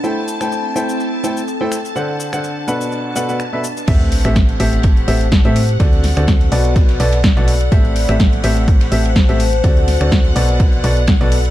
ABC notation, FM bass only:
X:1
M:4/4
L:1/16
Q:"Swing 16ths" 1/4=125
K:Ador
V:1 name="FM bass" clef=bass
z16 | z16 | A,,,3 A,,,3 A,,,4 A,,,3 A,,3 | D,,3 D,,3 B,,,4 B,,,3 B,,,3 |
A,,,3 A,,,3 A,,,4 A,,,3 A,,,3 | D,,3 D,,3 B,,,4 B,,,3 B,,,3 |]